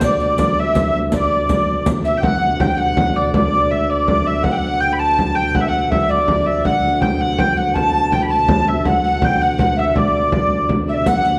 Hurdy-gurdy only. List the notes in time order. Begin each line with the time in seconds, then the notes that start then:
0.04 D5
0.22 D5
0.60 E5
1.16 D5
2.05 E5
2.17 G5
2.24 F#5
2.60 G5
2.78 F#5
3.16 D5
3.34 D5
3.71 E5
3.90 D5
4.26 E5
4.43 F#5
4.80 G5
4.93 B5
4.99 A5
5.35 G5
5.55 F#5
5.61 E5
5.68 F#5
5.91 E5
6.11 D5
6.46 E5
6.65 F#5
7.02 G5
7.21 F#5
7.39 G5
7.57 F#5
7.76 A5
8.12 G5
8.23 B5
8.30 A5
8.68 E5
8.87 F#5
9.24 G5
9.42 F#5
9.79 E5
9.97 D5
10.89 E5
11.07 F#5